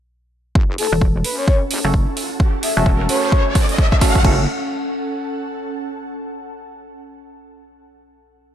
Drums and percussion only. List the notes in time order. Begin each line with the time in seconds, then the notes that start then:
0.55 kick
0.78 open hi-hat
1.01 kick
1.24 open hi-hat
1.48 kick
1.71 open hi-hat
1.94 kick
2.17 open hi-hat
2.40 kick
2.63 open hi-hat
2.86 kick
3.09 open hi-hat
3.32 kick
3.55 kick, open hi-hat
3.69 open hi-hat
3.78 kick
3.92 kick
4.01 kick, open hi-hat
4.15 kick
4.24 kick, crash